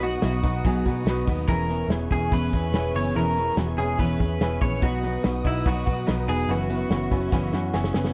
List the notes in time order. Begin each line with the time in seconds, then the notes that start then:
Already playing: B1 B2 F#3 B3 D#4 F#4 D#5 F#5 D#6
0.00 B3 D#4 F#4 B4, hi-hat pedal, open hi-hat
0.04 B3
0.22 B1 F#3 B3 D#4 E4 F#4 B4, snare, hi-hat pedal, open hi-hat
0.33 F#4
0.43 B1 B3 D#4 F#4 B4, kick, hi-hat pedal, open hi-hat
0.65 B1 B2 F#3 B3 D#4 F#4 G#4, kick, hi-hat pedal, open hi-hat
0.86 B2 B3 D#4 F#4 B4, kick, hi-hat pedal, open hi-hat
1.05 B1 F#3 B3 D#4 F#4 B4, snare, hi-hat pedal, open hi-hat
1.26 D#2 B3 D#4 F#4 B4, kick, hi-hat pedal, open hi-hat
1.48 E1 E3 B3 C#4 E4 G#4 A#4 B4 E5 G#5 C#6, kick, hi-hat pedal, open hi-hat
1.69 B3 C#4 E4 G#4 B4, hi-hat pedal, open hi-hat
1.88 E1 E3 B3 C#4 E4 G#4 B4, snare, hi-hat pedal, open hi-hat
1.93 G#4
2.11 E1 B3 C#4 E4 G#4 B4, kick, hi-hat pedal, open hi-hat
2.31 E1 E3 B3 C#4 E4 G#4 B4, kick, hi-hat pedal, open hi-hat
2.53 E2 B3 C#4 E4 G#4 B4, kick, hi-hat pedal, open hi-hat
2.72 E1 E3 B3 C#4 E4 G#4 B4, snare, hi-hat pedal, open hi-hat
2.94 F#1 B3 C#4 E4 G#4 B4 C#5, hi-hat pedal, open hi-hat
3.15 E1 E3 B3 C#4 E4 G#4 A#4 B4, hi-hat pedal, open hi-hat
3.36 B3 C#4 E4 G#4 B4, hi-hat pedal, open hi-hat
3.57 E1 E3 B3 C#4 E4 F#4 G#4 B4, snare, hi-hat pedal, open hi-hat
3.61 G#4
3.68 G#4
3.78 E1 C#4 E4 G#4 B4, hi-hat pedal, open hi-hat
3.83 B3
3.98 E1 E3 B3 C#4 E4 G#4 B4, kick, hi-hat pedal, open hi-hat
4.03 G#4
4.19 E2 C#4 E4 G#4 B4, kick, hi-hat pedal, open hi-hat
4.24 B3
4.40 E1 E3 B3 C#4 E4 G#4 B4, snare, hi-hat pedal, open hi-hat
4.45 C#4 G#4
4.61 A#1 B3 C#4 E4 G#4 B4 C#5, kick, hi-hat pedal, open hi-hat
4.66 B3
4.82 B1 B2 F#3 B3 D#4 F#4 B4 D#5 F#5 D#6, kick, hi-hat pedal, open hi-hat
5.03 F#3 B3 D#4 F#4 B4, hi-hat pedal, open hi-hat
5.24 B1 B2 F#3 B3 D#4 F#4 B4, snare, hi-hat pedal, open hi-hat
5.44 B1 F#3 B3 D#4 E4 F#4 B4, kick, hi-hat pedal, open hi-hat
5.66 B1 B2 F#3 B3 D#4 F#4 B4, kick, hi-hat pedal, open hi-hat
5.85 B2 B3 D#4 F#4 B4, kick, hi-hat pedal, open hi-hat
5.90 F#3 B3
6.07 B1 B2 F#3 B3 D#4 F#4 B4, snare, hi-hat pedal, open hi-hat
6.11 D#4
6.26 E1 B3 D#4 F#4 G#4 B4, hi-hat pedal, open hi-hat
6.31 F#3 B3
6.48 F#1 F#2 C#3 E3 B3 C#4 E4 F#4 B4 E5 F#5 C#6, hi-hat pedal, open hi-hat
6.70 E3 B3 C#4 E4 F#4 B4, hi-hat pedal, open hi-hat
6.90 F#1 C#3 E3 B3 C#4 E4 F#4 B4, snare, hi-hat pedal, open hi-hat
7.11 F#1 E3 B3 C#4 E4 F#4 B4, kick, hi-hat pedal, open hi-hat
7.21 C#4
7.31 F#1 F#2 C#3 E3 B3 C#4 E4 F#4 B4, kick, snare
7.53 F#2 E3 B3 C#4 E4 F#4 B4, snare
7.73 F#1 C#3 E3 B3 C#4 E4 F#4 G#4, snare
7.84 C#4, snare
7.94 F#1 E3 B3 C#4 E4 F#4 B4, snare
8.05 snare